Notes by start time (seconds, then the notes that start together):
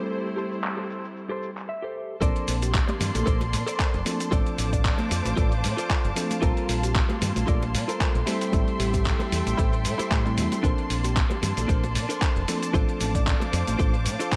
Already playing: G3 A3 C4 E4 G4 A4 C5
0.11 shaker
0.36 G4 A4 C5, shaker
0.52 shaker
0.64 clap, shaker
0.77 G4 A4 C5
0.90 shaker
1.05 shaker
1.17 shaker
1.29 G4 A4 C5
1.43 shaker
1.57 clap, shaker
1.68 E5, muted clean electric guitar stroke
1.82 G4 A4 C5
2.21 A#1 F3 A#3 C4 D4 A4 A#4 C5 D5 A5 C6, kick, closed hi-hat, shaker, maracas
2.36 closed hi-hat, maracas
2.48 A#1, open hi-hat, shaker
2.62 G4, closed hi-hat, maracas, shaker
2.74 kick, clap, closed hi-hat, shaker, maracas
2.88 G4, muted clean electric guitar stroke, closed hi-hat, muted conga, high conga, maracas
3.00 G2 G4, muted clean electric guitar stroke, open hi-hat, low conga, shaker
3.15 A#1 A4, closed hi-hat, high conga, maracas, shaker
3.26 A#1 A4 A#4 C5 D5, kick, closed hi-hat, maracas, shaker
3.41 closed hi-hat, muted conga, maracas
3.52 A#2, muted clean electric guitar stroke, open hi-hat, shaker
3.67 A4 A#4 C5 D5, closed hi-hat, maracas, shaker
3.79 kick, clap, closed hi-hat, shaker, maracas
3.94 F1, closed hi-hat, maracas
4.05 F3 A#3 C4 D4 A4, open hi-hat, high conga, shaker
4.20 closed hi-hat, maracas, shaker
4.31 A1 F3 A3 C4 D4 F4 A4 C5 D5 F5 D6, kick, closed hi-hat, maracas, shaker
4.46 closed hi-hat, maracas
4.58 A1, open hi-hat, shaker
4.73 D5, kick, closed hi-hat, maracas, shaker
4.84 D5, kick, clap, closed hi-hat, maracas, shaker
4.98 muted clean electric guitar stroke, closed hi-hat, muted conga, high conga, maracas
5.10 F2, muted clean electric guitar stroke, open hi-hat, shaker
5.25 A1, closed hi-hat, high conga, maracas, shaker
5.36 A1 F4 A4 C5 D5, kick, closed hi-hat, maracas, shaker
5.52 closed hi-hat, maracas
5.63 A2, muted clean electric guitar stroke, open hi-hat, shaker
5.77 F4 A4 C5 D5, closed hi-hat, maracas, shaker
5.90 kick, clap, closed hi-hat, maracas, shaker
6.04 G1, closed hi-hat, maracas
6.16 F3 A3 C4 D4 A4, open hi-hat, high conga, shaker
6.30 closed hi-hat, muted conga, maracas, shaker
6.42 A#1 G3 A#3 C4 F4 A4 A#4 C5 A5 C6, kick, closed hi-hat, maracas, shaker
6.57 closed hi-hat, maracas
6.69 A#1, open hi-hat, shaker
6.83 G4, closed hi-hat, maracas, shaker
6.95 kick, clap, closed hi-hat, maracas, shaker
7.09 G4, muted clean electric guitar stroke, closed hi-hat, muted conga, high conga, maracas
7.21 G2 G4, muted clean electric guitar stroke, open hi-hat, low conga, shaker
7.36 A#1, closed hi-hat, high conga, shaker, maracas
7.47 A#1 F4 A4 A#4 D5, kick, closed hi-hat, maracas, shaker
7.62 closed hi-hat, muted conga, maracas
7.73 A#2, muted clean electric guitar stroke, open hi-hat, shaker
7.88 F4 A4 A#4 C5, closed hi-hat, maracas, shaker
8.01 kick, clap, closed hi-hat, maracas, shaker
8.15 A#1, closed hi-hat, maracas
8.26 G3 A3 C4 E4 G4 A4 C5 E5 G5, open hi-hat, high conga, shaker
8.41 closed hi-hat, maracas, shaker
8.52 A1 G3 A3 C4 E4 A4, kick, closed hi-hat, maracas, shaker
8.68 closed hi-hat, maracas
8.80 A1 G4, open hi-hat, shaker
8.93 kick, closed hi-hat, maracas, shaker
9.05 kick, clap, closed hi-hat, maracas, shaker
9.19 muted clean electric guitar stroke, closed hi-hat, muted conga, high conga, maracas
9.31 E2, muted clean electric guitar stroke, open hi-hat, shaker
9.46 A1, closed hi-hat, high conga, maracas, shaker
9.57 A1 E4 G4 A4 C5, kick, closed hi-hat, maracas, shaker
9.73 closed hi-hat, maracas
9.84 A2, muted clean electric guitar stroke, open hi-hat, shaker
9.98 E4 G4 A4 C5, muted fingered electric bass stroke, closed hi-hat, muted conga, maracas, shaker
10.11 A2, kick, clap, closed hi-hat, maracas, shaker
10.25 G3 A3 C4 E4 A4, closed hi-hat, maracas
10.38 E2, open hi-hat, high conga, shaker
10.52 closed hi-hat, muted conga, shaker, maracas
10.63 A#1 F3 A#3 C4 D4 A4 A#4 C5 D5 A5, kick, closed hi-hat, shaker, maracas
10.78 closed hi-hat, maracas
10.90 A#1, open hi-hat, shaker
11.04 G4, closed hi-hat, maracas, shaker
11.16 kick, clap, closed hi-hat, maracas, shaker
11.30 G4, muted clean electric guitar stroke, closed hi-hat, muted conga, high conga, maracas
11.42 G2 G4, muted clean electric guitar stroke, open hi-hat, low conga, shaker
11.57 A#1 A4, closed hi-hat, high conga, shaker, maracas
11.68 A#1 D4 A4 A#4 C5, kick, closed hi-hat, maracas, shaker
11.84 closed hi-hat, muted conga, maracas
11.94 A#2, muted clean electric guitar stroke, open hi-hat, shaker
12.09 D4 A4 A#4 C5, closed hi-hat, maracas, shaker
12.22 kick, clap, closed hi-hat, shaker, maracas
12.36 F1, closed hi-hat, maracas
12.48 F3 A#3 C4 D4 A4, open hi-hat, high conga, shaker
12.63 closed hi-hat, shaker, maracas
12.73 A1 F3 A3 C4 D4 F4 A4 C5 F5 D6, kick, closed hi-hat, shaker, maracas
12.89 closed hi-hat, maracas
13.01 A1, open hi-hat, shaker
13.15 D5, kick, closed hi-hat, maracas, shaker
13.27 D5, kick, clap, closed hi-hat, shaker, maracas
13.40 muted clean electric guitar stroke, closed hi-hat, muted conga, high conga, maracas
13.52 F2, muted clean electric guitar stroke, open hi-hat, shaker
13.67 A1, closed hi-hat, high conga, maracas, shaker
13.79 A1 D4 F4 A4 C5, kick, closed hi-hat, shaker, maracas
13.94 closed hi-hat, maracas
14.05 A2, muted clean electric guitar stroke, open hi-hat, shaker
14.19 D4 F4 A4 C5, closed hi-hat, maracas, shaker
14.32 kick, clap, closed hi-hat, maracas, shaker